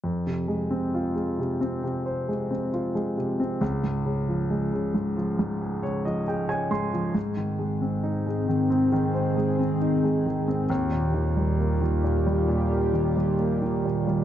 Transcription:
<<
  \new Staff \with { instrumentName = "Analog synth pad" } { \time 4/4 \key f \minor \tempo 4 = 68 << { r1 | r1 | <aes, c' aes'>1 | <ees, f' g'>1 | } \\ { r1 | r1 | ees1~ | ees1 | } >> }
  \new Staff \with { instrumentName = "Grand piano" } { \time 4/4 \key f \minor r1 | r2 r8 des''16 ees''16 g''16 aes''16 c'''8 | r1 | r1 | }
  \new Staff \with { instrumentName = "Grand piano" } { \clef bass \time 4/4 \key f \minor f,16 c16 aes16 c'16 f'16 aes16 c16 c'16 c16 c''16 aes16 c'16 f'16 aes16 c16 c'16 | des,16 aes,16 des16 f16 aes16 des16 aes,16 f16 aes,16 aes'16 des16 f16 aes16 des16 aes,16 f16 | aes,16 ees16 aes16 c'16 ees'16 aes16 ees16 c'16 ees16 c''16 aes16 c'16 ees'16 aes16 ees16 c'16 | ees,16 bes,16 ees16 g16 bes16 ees16 bes,16 g16 bes,16 bes'16 ees16 g16 bes16 ees16 bes,16 g16 | }
>>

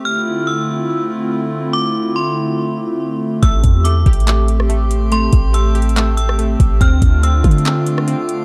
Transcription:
<<
  \new Staff \with { instrumentName = "Synth bell" } { \time 4/4 \key d \dorian \tempo 4 = 142 f'''4 e'''2. | d'''4 c'''4 r2 | e'''4 d'''2. | c'''4 e'''4. e'''8 r4 |
f'''4 e'''2. | }
  \new Staff \with { instrumentName = "Synth texture" } { \time 4/4 \key d \dorian r1 | r1 | <a' g'' c'''>1~ | <a' g'' c'''>1 |
<c'' f'' d'''>1 | }
  \new Staff \with { instrumentName = "Analog synth pad" } { \time 4/4 \key d \dorian << { <d e' f'>1~ | <d e' f'>1 | <c' g'>1~ | <c' g'>1 |
<d a d' f'>1 | } \\ { <a c'>1~ | <a c'>1~ | <a c'>1~ | <a c'>1 |
r1 | } >> }
  \new Staff \with { instrumentName = "Synth pluck" } { \time 4/4 \key d \dorian r1 | r1 | a4 a8 g'8 a4 a4 | a4 a8 g'8 a4 a4 |
c'4 c'8 f'8 c'4 c'4 | }
  \new Staff \with { instrumentName = "808-style bass" } { \clef bass \time 4/4 \key d \dorian r1 | r1 | a,,8 e,4 a,,2~ a,,8~ | a,,8 a,,2. a,,8 |
d,8 d,4 d4.~ d16 r8. | }
  \new DrumStaff \with { instrumentName = "Drums" } \drummode { \time 4/4 r4 r4 r4 r4 | r4 r4 r4 r4 | <hh bd>8 <hh bd>8 \tuplet 3/2 { hh16 r16 r16 <hh bd>16 hh16 hh16 } <hc hh>8 hh16 ss16 hh8 hh8 | hh8 <hh bd>8 \tuplet 3/2 { hh16 r16 r16 hh16 hh16 hh16 } <hc hh>8 hh16 ss16 hh8 <hh bd>8 |
<hh bd>8 <hh bd>8 \tuplet 3/2 { hh16 r16 r16 <hh bd>16 hh16 hh16 } <hc hh>8 hh16 ss16 hh8 hh8 | }
>>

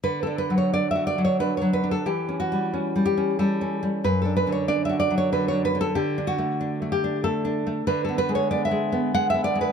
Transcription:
\new Staff \with { instrumentName = "Nylon-string guitar" } { \time 3/4 \key d \major \tempo 4 = 94 << { b'16 a'16 b'16 cis''16 d''16 e''16 d''16 cis''16 b'16 cis''16 b'16 a'16 | g'8 fis'4 g'8 a'4 | b'16 a'16 b'16 cis''16 d''16 e''16 d''16 cis''16 b'16 cis''16 b'16 a'16 | g'8 fis'4 g'8 a'4 |
b'16 a'16 b'16 cis''16 d''16 e''8. fis''16 e''16 d''16 b'16 | } \\ { \tuplet 3/2 { d8 d'8 fis8 d'8 fis'8 fis8 d'8 fis8 d'8 } | \tuplet 3/2 { e8 cis'8 g8 cis'8 g8 cis'8 g8 cis'8 g8 } | \tuplet 3/2 { fis,8 d'8 d8 d'8 fis'8 fis8 d8 d'8 d8 } | \tuplet 3/2 { d8 d'8 a8 d'8 a8 d'8 a8 d'8 a8 } |
\tuplet 3/2 { d8 b8 gis8 b8 gis8 b8 gis8 b8 gis8 } | } >> }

